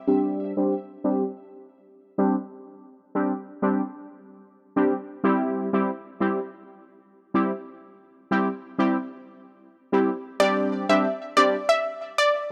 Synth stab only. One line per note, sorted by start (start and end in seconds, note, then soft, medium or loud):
0.07 0.53 G3 medium
0.07 0.53 C4 medium
0.07 0.53 D4 medium
0.07 0.53 G4 loud
0.57 0.74 G3 medium
0.57 0.74 C4 medium
0.57 0.74 D4 medium
0.57 0.74 G4 medium
1.04 1.23 G3 medium
1.04 1.23 C4 medium
1.04 1.23 D4 medium
1.04 1.24 G4 medium
2.18 2.35 G3 medium
2.18 2.35 C4 medium
2.18 2.36 D4 medium
2.18 2.36 G4 medium
3.15 3.32 G3 medium
3.15 3.32 C4 medium
3.15 3.32 D4 medium
3.15 3.32 G4 medium
3.62 3.81 G3 medium
3.62 3.81 C4 medium
3.62 3.82 D4 medium
3.62 3.82 G4 medium
4.76 4.93 G3 medium
4.76 4.94 C4 medium
4.76 4.94 D4 medium
4.76 4.94 G4 medium
5.24 5.69 G3 medium
5.24 5.69 C4 medium
5.24 5.69 E4 medium
5.24 5.69 G4 loud
5.73 5.90 G3 medium
5.73 5.90 C4 medium
5.73 5.90 E4 medium
5.73 5.91 G4 medium
6.21 6.39 G3 medium
6.21 6.40 C4 medium
6.21 6.40 E4 medium
6.21 6.40 G4 medium
7.34 7.52 G3 medium
7.34 7.52 C4 medium
7.34 7.52 E4 medium
7.34 7.52 G4 medium
8.31 8.48 G3 medium
8.31 8.48 C4 medium
8.31 8.48 E4 medium
8.31 8.49 G4 medium
8.78 8.97 G3 medium
8.78 8.98 C4 medium
8.78 8.98 E4 medium
8.78 8.98 G4 medium
9.92 10.10 G3 medium
9.92 10.10 C4 medium
9.92 10.10 E4 medium
9.92 10.10 G4 medium
10.40 10.85 G3 medium
10.40 10.85 C4 medium
10.40 10.85 D4 medium
10.40 10.85 G4 loud
10.89 11.06 G3 medium
10.89 11.07 C4 medium
10.89 11.07 D4 medium
10.89 11.07 G4 medium
11.37 11.56 G3 medium
11.37 11.56 C4 medium
11.37 11.56 D4 medium
11.37 11.56 G4 medium